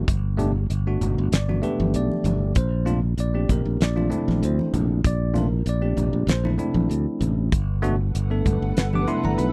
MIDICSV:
0, 0, Header, 1, 5, 480
1, 0, Start_track
1, 0, Key_signature, 1, "major"
1, 0, Tempo, 619835
1, 65, Time_signature, 4, 2, 24, 8
1, 7377, End_track
2, 0, Start_track
2, 0, Title_t, "Ambient pad"
2, 0, Program_c, 0, 92
2, 5821, Note_on_c, 0, 71, 88
2, 5823, Note_on_c, 0, 78, 69
2, 5828, Note_on_c, 0, 55, 87
2, 5829, Note_on_c, 0, 69, 71
2, 7377, Note_off_c, 0, 55, 0
2, 7377, Note_off_c, 0, 69, 0
2, 7377, Note_off_c, 0, 71, 0
2, 7377, Note_off_c, 0, 78, 0
2, 7377, End_track
3, 0, Start_track
3, 0, Title_t, "Tine electric piano"
3, 0, Program_c, 1, 4
3, 291, Note_on_c, 1, 57, 97
3, 297, Note_on_c, 1, 67, 96
3, 298, Note_on_c, 1, 59, 82
3, 299, Note_on_c, 1, 62, 95
3, 391, Note_off_c, 1, 57, 0
3, 394, Note_off_c, 1, 59, 0
3, 394, Note_off_c, 1, 67, 0
3, 395, Note_off_c, 1, 62, 0
3, 673, Note_on_c, 1, 57, 74
3, 676, Note_on_c, 1, 59, 67
3, 677, Note_on_c, 1, 62, 71
3, 679, Note_on_c, 1, 66, 82
3, 1010, Note_off_c, 1, 57, 0
3, 1011, Note_off_c, 1, 59, 0
3, 1012, Note_off_c, 1, 62, 0
3, 1013, Note_off_c, 1, 66, 0
3, 1038, Note_on_c, 1, 74, 79
3, 1151, Note_on_c, 1, 57, 67
3, 1152, Note_on_c, 1, 59, 68
3, 1154, Note_on_c, 1, 62, 65
3, 1156, Note_on_c, 1, 66, 68
3, 1232, Note_off_c, 1, 57, 0
3, 1233, Note_off_c, 1, 59, 0
3, 1234, Note_off_c, 1, 62, 0
3, 1235, Note_off_c, 1, 66, 0
3, 1253, Note_on_c, 1, 57, 89
3, 1258, Note_on_c, 1, 59, 77
3, 1262, Note_on_c, 1, 62, 72
3, 1262, Note_on_c, 1, 67, 89
3, 1265, Note_off_c, 1, 74, 0
3, 1270, Note_on_c, 1, 71, 67
3, 1501, Note_off_c, 1, 71, 0
3, 1519, Note_on_c, 1, 74, 84
3, 1949, Note_off_c, 1, 57, 0
3, 1952, Note_off_c, 1, 59, 0
3, 1954, Note_off_c, 1, 62, 0
3, 1954, Note_off_c, 1, 67, 0
3, 1962, Note_off_c, 1, 74, 0
3, 1991, Note_on_c, 1, 72, 80
3, 2208, Note_on_c, 1, 57, 75
3, 2213, Note_on_c, 1, 60, 76
3, 2215, Note_on_c, 1, 62, 82
3, 2216, Note_on_c, 1, 65, 102
3, 2222, Note_off_c, 1, 72, 0
3, 2310, Note_off_c, 1, 57, 0
3, 2312, Note_off_c, 1, 60, 0
3, 2313, Note_off_c, 1, 62, 0
3, 2314, Note_off_c, 1, 65, 0
3, 2349, Note_on_c, 1, 62, 27
3, 2356, Note_on_c, 1, 65, 31
3, 2406, Note_off_c, 1, 62, 0
3, 2409, Note_off_c, 1, 65, 0
3, 2479, Note_on_c, 1, 74, 88
3, 2585, Note_on_c, 1, 57, 61
3, 2591, Note_on_c, 1, 60, 62
3, 2592, Note_on_c, 1, 62, 57
3, 2595, Note_on_c, 1, 67, 72
3, 2706, Note_off_c, 1, 74, 0
3, 2721, Note_on_c, 1, 70, 64
3, 2926, Note_off_c, 1, 57, 0
3, 2929, Note_off_c, 1, 60, 0
3, 2930, Note_off_c, 1, 62, 0
3, 2931, Note_off_c, 1, 67, 0
3, 2947, Note_off_c, 1, 70, 0
3, 2968, Note_on_c, 1, 74, 91
3, 3065, Note_on_c, 1, 57, 76
3, 3068, Note_on_c, 1, 60, 69
3, 3068, Note_on_c, 1, 62, 67
3, 3072, Note_on_c, 1, 65, 79
3, 3150, Note_off_c, 1, 57, 0
3, 3151, Note_off_c, 1, 60, 0
3, 3151, Note_off_c, 1, 62, 0
3, 3153, Note_off_c, 1, 65, 0
3, 3173, Note_on_c, 1, 60, 77
3, 3175, Note_on_c, 1, 57, 84
3, 3179, Note_on_c, 1, 64, 88
3, 3180, Note_on_c, 1, 62, 71
3, 3407, Note_off_c, 1, 74, 0
3, 3445, Note_on_c, 1, 72, 66
3, 3669, Note_off_c, 1, 72, 0
3, 3870, Note_off_c, 1, 57, 0
3, 3870, Note_off_c, 1, 60, 0
3, 3873, Note_off_c, 1, 62, 0
3, 3873, Note_off_c, 1, 64, 0
3, 3925, Note_on_c, 1, 74, 96
3, 4134, Note_on_c, 1, 57, 86
3, 4135, Note_on_c, 1, 60, 77
3, 4137, Note_on_c, 1, 62, 84
3, 4138, Note_on_c, 1, 65, 91
3, 4149, Note_off_c, 1, 74, 0
3, 4164, Note_on_c, 1, 70, 53
3, 4233, Note_off_c, 1, 57, 0
3, 4233, Note_off_c, 1, 60, 0
3, 4234, Note_off_c, 1, 62, 0
3, 4235, Note_off_c, 1, 65, 0
3, 4271, Note_on_c, 1, 62, 26
3, 4276, Note_on_c, 1, 64, 26
3, 4327, Note_off_c, 1, 62, 0
3, 4330, Note_off_c, 1, 64, 0
3, 4389, Note_off_c, 1, 70, 0
3, 4407, Note_on_c, 1, 74, 88
3, 4502, Note_on_c, 1, 57, 65
3, 4503, Note_on_c, 1, 60, 59
3, 4505, Note_on_c, 1, 62, 59
3, 4508, Note_on_c, 1, 67, 69
3, 4844, Note_off_c, 1, 57, 0
3, 4845, Note_off_c, 1, 60, 0
3, 4846, Note_off_c, 1, 62, 0
3, 4846, Note_off_c, 1, 74, 0
3, 4848, Note_off_c, 1, 67, 0
3, 4881, Note_on_c, 1, 72, 81
3, 4987, Note_on_c, 1, 57, 69
3, 4991, Note_on_c, 1, 60, 55
3, 4995, Note_on_c, 1, 64, 76
3, 4996, Note_on_c, 1, 62, 64
3, 5021, Note_off_c, 1, 72, 0
3, 5071, Note_off_c, 1, 57, 0
3, 5073, Note_off_c, 1, 60, 0
3, 5075, Note_off_c, 1, 62, 0
3, 5075, Note_off_c, 1, 64, 0
3, 5095, Note_on_c, 1, 57, 76
3, 5101, Note_on_c, 1, 62, 72
3, 5102, Note_on_c, 1, 60, 78
3, 5103, Note_on_c, 1, 64, 86
3, 5790, Note_off_c, 1, 57, 0
3, 5793, Note_off_c, 1, 60, 0
3, 5793, Note_off_c, 1, 62, 0
3, 5794, Note_off_c, 1, 64, 0
3, 6055, Note_on_c, 1, 57, 109
3, 6059, Note_on_c, 1, 59, 100
3, 6063, Note_on_c, 1, 62, 89
3, 6064, Note_on_c, 1, 66, 109
3, 6153, Note_off_c, 1, 57, 0
3, 6155, Note_off_c, 1, 59, 0
3, 6157, Note_off_c, 1, 62, 0
3, 6158, Note_off_c, 1, 66, 0
3, 6195, Note_on_c, 1, 62, 28
3, 6203, Note_on_c, 1, 66, 33
3, 6248, Note_off_c, 1, 62, 0
3, 6252, Note_off_c, 1, 66, 0
3, 6432, Note_on_c, 1, 57, 79
3, 6435, Note_on_c, 1, 62, 60
3, 6436, Note_on_c, 1, 59, 70
3, 6436, Note_on_c, 1, 69, 79
3, 6769, Note_off_c, 1, 57, 0
3, 6770, Note_off_c, 1, 62, 0
3, 6771, Note_off_c, 1, 59, 0
3, 6771, Note_off_c, 1, 69, 0
3, 6915, Note_on_c, 1, 57, 66
3, 6918, Note_on_c, 1, 59, 63
3, 6919, Note_on_c, 1, 62, 64
3, 6920, Note_on_c, 1, 67, 67
3, 6934, Note_on_c, 1, 86, 96
3, 6994, Note_off_c, 1, 57, 0
3, 6996, Note_off_c, 1, 59, 0
3, 6996, Note_off_c, 1, 62, 0
3, 6997, Note_off_c, 1, 67, 0
3, 7028, Note_on_c, 1, 57, 85
3, 7030, Note_on_c, 1, 64, 101
3, 7031, Note_on_c, 1, 59, 83
3, 7032, Note_off_c, 1, 86, 0
3, 7032, Note_on_c, 1, 84, 84
3, 7034, Note_on_c, 1, 62, 78
3, 7154, Note_off_c, 1, 84, 0
3, 7162, Note_on_c, 1, 82, 87
3, 7264, Note_on_c, 1, 83, 91
3, 7266, Note_off_c, 1, 82, 0
3, 7377, Note_off_c, 1, 57, 0
3, 7377, Note_off_c, 1, 59, 0
3, 7377, Note_off_c, 1, 62, 0
3, 7377, Note_off_c, 1, 64, 0
3, 7377, Note_off_c, 1, 83, 0
3, 7377, End_track
4, 0, Start_track
4, 0, Title_t, "Fingered electric bass"
4, 0, Program_c, 2, 33
4, 62, Note_on_c, 2, 31, 93
4, 513, Note_off_c, 2, 31, 0
4, 541, Note_on_c, 2, 31, 89
4, 760, Note_off_c, 2, 31, 0
4, 783, Note_on_c, 2, 31, 84
4, 901, Note_off_c, 2, 31, 0
4, 916, Note_on_c, 2, 31, 90
4, 1015, Note_off_c, 2, 31, 0
4, 1023, Note_on_c, 2, 31, 96
4, 1241, Note_off_c, 2, 31, 0
4, 1391, Note_on_c, 2, 31, 88
4, 1493, Note_off_c, 2, 31, 0
4, 1502, Note_on_c, 2, 35, 89
4, 1620, Note_off_c, 2, 35, 0
4, 1736, Note_on_c, 2, 31, 98
4, 1957, Note_off_c, 2, 31, 0
4, 1983, Note_on_c, 2, 34, 104
4, 2434, Note_off_c, 2, 34, 0
4, 2459, Note_on_c, 2, 34, 84
4, 2679, Note_off_c, 2, 34, 0
4, 2704, Note_on_c, 2, 34, 96
4, 2822, Note_off_c, 2, 34, 0
4, 2830, Note_on_c, 2, 34, 87
4, 2933, Note_off_c, 2, 34, 0
4, 2947, Note_on_c, 2, 34, 97
4, 3164, Note_off_c, 2, 34, 0
4, 3314, Note_on_c, 2, 34, 86
4, 3415, Note_off_c, 2, 34, 0
4, 3427, Note_on_c, 2, 38, 94
4, 3544, Note_off_c, 2, 38, 0
4, 3667, Note_on_c, 2, 34, 94
4, 3884, Note_off_c, 2, 34, 0
4, 3908, Note_on_c, 2, 34, 92
4, 4356, Note_off_c, 2, 34, 0
4, 4381, Note_on_c, 2, 34, 93
4, 4601, Note_off_c, 2, 34, 0
4, 4621, Note_on_c, 2, 34, 83
4, 4740, Note_off_c, 2, 34, 0
4, 4747, Note_on_c, 2, 34, 85
4, 4851, Note_off_c, 2, 34, 0
4, 4855, Note_on_c, 2, 34, 98
4, 5077, Note_off_c, 2, 34, 0
4, 5222, Note_on_c, 2, 34, 89
4, 5328, Note_off_c, 2, 34, 0
4, 5339, Note_on_c, 2, 38, 80
4, 5459, Note_off_c, 2, 38, 0
4, 5580, Note_on_c, 2, 33, 97
4, 5800, Note_off_c, 2, 33, 0
4, 5828, Note_on_c, 2, 31, 102
4, 6276, Note_off_c, 2, 31, 0
4, 6309, Note_on_c, 2, 31, 90
4, 6525, Note_off_c, 2, 31, 0
4, 6549, Note_on_c, 2, 31, 96
4, 6664, Note_off_c, 2, 31, 0
4, 6678, Note_on_c, 2, 31, 86
4, 6776, Note_off_c, 2, 31, 0
4, 6792, Note_on_c, 2, 31, 85
4, 7006, Note_off_c, 2, 31, 0
4, 7159, Note_on_c, 2, 31, 86
4, 7257, Note_off_c, 2, 31, 0
4, 7267, Note_on_c, 2, 35, 94
4, 7377, Note_off_c, 2, 35, 0
4, 7377, End_track
5, 0, Start_track
5, 0, Title_t, "Drums"
5, 61, Note_on_c, 9, 36, 98
5, 63, Note_on_c, 9, 42, 74
5, 139, Note_off_c, 9, 36, 0
5, 140, Note_off_c, 9, 42, 0
5, 302, Note_on_c, 9, 64, 67
5, 304, Note_on_c, 9, 42, 59
5, 379, Note_off_c, 9, 64, 0
5, 381, Note_off_c, 9, 42, 0
5, 544, Note_on_c, 9, 42, 78
5, 622, Note_off_c, 9, 42, 0
5, 786, Note_on_c, 9, 42, 55
5, 786, Note_on_c, 9, 64, 67
5, 863, Note_off_c, 9, 42, 0
5, 863, Note_off_c, 9, 64, 0
5, 1026, Note_on_c, 9, 42, 95
5, 1034, Note_on_c, 9, 38, 110
5, 1104, Note_off_c, 9, 42, 0
5, 1112, Note_off_c, 9, 38, 0
5, 1155, Note_on_c, 9, 63, 63
5, 1233, Note_off_c, 9, 63, 0
5, 1263, Note_on_c, 9, 42, 60
5, 1270, Note_on_c, 9, 64, 54
5, 1340, Note_off_c, 9, 42, 0
5, 1347, Note_off_c, 9, 64, 0
5, 1398, Note_on_c, 9, 63, 72
5, 1475, Note_off_c, 9, 63, 0
5, 1502, Note_on_c, 9, 42, 72
5, 1579, Note_off_c, 9, 42, 0
5, 1639, Note_on_c, 9, 63, 56
5, 1716, Note_off_c, 9, 63, 0
5, 1742, Note_on_c, 9, 42, 71
5, 1749, Note_on_c, 9, 63, 70
5, 1749, Note_on_c, 9, 64, 67
5, 1819, Note_off_c, 9, 42, 0
5, 1826, Note_off_c, 9, 63, 0
5, 1826, Note_off_c, 9, 64, 0
5, 1975, Note_on_c, 9, 42, 77
5, 1982, Note_on_c, 9, 36, 103
5, 2053, Note_off_c, 9, 42, 0
5, 2059, Note_off_c, 9, 36, 0
5, 2222, Note_on_c, 9, 42, 55
5, 2232, Note_on_c, 9, 64, 62
5, 2300, Note_off_c, 9, 42, 0
5, 2309, Note_off_c, 9, 64, 0
5, 2462, Note_on_c, 9, 42, 78
5, 2540, Note_off_c, 9, 42, 0
5, 2705, Note_on_c, 9, 36, 73
5, 2706, Note_on_c, 9, 42, 56
5, 2709, Note_on_c, 9, 64, 67
5, 2783, Note_off_c, 9, 36, 0
5, 2783, Note_off_c, 9, 42, 0
5, 2786, Note_off_c, 9, 64, 0
5, 2949, Note_on_c, 9, 42, 82
5, 2957, Note_on_c, 9, 38, 105
5, 3027, Note_off_c, 9, 42, 0
5, 3034, Note_off_c, 9, 38, 0
5, 3077, Note_on_c, 9, 63, 66
5, 3155, Note_off_c, 9, 63, 0
5, 3187, Note_on_c, 9, 42, 57
5, 3194, Note_on_c, 9, 64, 62
5, 3264, Note_off_c, 9, 42, 0
5, 3271, Note_off_c, 9, 64, 0
5, 3319, Note_on_c, 9, 63, 71
5, 3328, Note_on_c, 9, 38, 30
5, 3396, Note_off_c, 9, 63, 0
5, 3405, Note_off_c, 9, 38, 0
5, 3431, Note_on_c, 9, 42, 73
5, 3508, Note_off_c, 9, 42, 0
5, 3555, Note_on_c, 9, 63, 63
5, 3633, Note_off_c, 9, 63, 0
5, 3668, Note_on_c, 9, 42, 56
5, 3668, Note_on_c, 9, 64, 71
5, 3745, Note_off_c, 9, 64, 0
5, 3746, Note_off_c, 9, 42, 0
5, 3907, Note_on_c, 9, 36, 106
5, 3909, Note_on_c, 9, 42, 82
5, 3984, Note_off_c, 9, 36, 0
5, 3986, Note_off_c, 9, 42, 0
5, 4147, Note_on_c, 9, 42, 55
5, 4150, Note_on_c, 9, 63, 65
5, 4150, Note_on_c, 9, 64, 62
5, 4224, Note_off_c, 9, 42, 0
5, 4228, Note_off_c, 9, 63, 0
5, 4228, Note_off_c, 9, 64, 0
5, 4384, Note_on_c, 9, 42, 73
5, 4462, Note_off_c, 9, 42, 0
5, 4625, Note_on_c, 9, 64, 67
5, 4627, Note_on_c, 9, 42, 51
5, 4703, Note_off_c, 9, 64, 0
5, 4704, Note_off_c, 9, 42, 0
5, 4867, Note_on_c, 9, 42, 84
5, 4875, Note_on_c, 9, 38, 113
5, 4944, Note_off_c, 9, 42, 0
5, 4952, Note_off_c, 9, 38, 0
5, 4994, Note_on_c, 9, 63, 62
5, 5071, Note_off_c, 9, 63, 0
5, 5098, Note_on_c, 9, 64, 58
5, 5103, Note_on_c, 9, 42, 54
5, 5176, Note_off_c, 9, 64, 0
5, 5181, Note_off_c, 9, 42, 0
5, 5226, Note_on_c, 9, 63, 71
5, 5304, Note_off_c, 9, 63, 0
5, 5349, Note_on_c, 9, 42, 71
5, 5427, Note_off_c, 9, 42, 0
5, 5585, Note_on_c, 9, 64, 58
5, 5589, Note_on_c, 9, 42, 59
5, 5662, Note_off_c, 9, 64, 0
5, 5666, Note_off_c, 9, 42, 0
5, 5826, Note_on_c, 9, 36, 102
5, 5826, Note_on_c, 9, 42, 78
5, 5903, Note_off_c, 9, 36, 0
5, 5904, Note_off_c, 9, 42, 0
5, 6061, Note_on_c, 9, 64, 62
5, 6070, Note_on_c, 9, 42, 60
5, 6138, Note_off_c, 9, 64, 0
5, 6148, Note_off_c, 9, 42, 0
5, 6311, Note_on_c, 9, 42, 79
5, 6389, Note_off_c, 9, 42, 0
5, 6548, Note_on_c, 9, 64, 62
5, 6549, Note_on_c, 9, 36, 77
5, 6554, Note_on_c, 9, 42, 58
5, 6625, Note_off_c, 9, 64, 0
5, 6627, Note_off_c, 9, 36, 0
5, 6631, Note_off_c, 9, 42, 0
5, 6790, Note_on_c, 9, 42, 92
5, 6797, Note_on_c, 9, 38, 113
5, 6867, Note_off_c, 9, 42, 0
5, 6875, Note_off_c, 9, 38, 0
5, 6915, Note_on_c, 9, 63, 65
5, 6993, Note_off_c, 9, 63, 0
5, 7026, Note_on_c, 9, 64, 59
5, 7030, Note_on_c, 9, 42, 54
5, 7103, Note_off_c, 9, 64, 0
5, 7107, Note_off_c, 9, 42, 0
5, 7153, Note_on_c, 9, 63, 69
5, 7230, Note_off_c, 9, 63, 0
5, 7268, Note_on_c, 9, 42, 75
5, 7345, Note_off_c, 9, 42, 0
5, 7377, End_track
0, 0, End_of_file